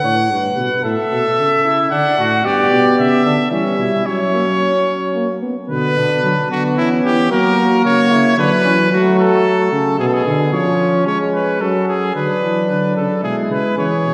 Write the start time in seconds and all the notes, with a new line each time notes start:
Already playing: F#5
0.03 A2 C#5
0.30 G2 B4
0.57 B2
0.83 A2 A4 E5
1.12 B2
1.38 C#3
1.64 E4
1.91 D3 D4 F#5
2.19 A2 F#4
2.44 G2 B3 G4 D5
2.72 B2
2.98 C#3 E5
3.25 D3 D4
3.51 E3 G3 C#4 E5
3.78 B2 E4
4.05 F#3 C#4 C#5
4.33 A#3
4.60 C#4
4.87 C#4
5.15 A#3
5.42 B3
5.69 B2 D3 B3 B4
5.97 B2 D4
6.23 D3 F#3
6.50 D3 B3 F#4
6.77 E3 C#4 E4
7.04 E3 G4
7.31 F#3 A#3 F#4 A#4
7.85 C#3 F#4 C#5
8.11 C#3 E4
8.38 D3 F#3 D4 B4
8.64 E3 C#4
8.91 F#3 A3 F#4
9.19 A4
9.46 A3
9.72 C#3
9.99 B2 B3 G#4
10.07 A4
10.14 G#4
10.26 D3
10.53 F3 C#4 C#5
11.07 G#3 C#5
11.34 B4
11.61 F#3 C#4 A4
11.87 G#4
12.14 D3 F#3 D4 B4
12.42 E3
12.69 D3
12.96 C#3 A4
13.22 B2 G#3 E4 G#4
13.50 C#3 B4
13.76 C#3 E3 G#4 C#5
14.04 B2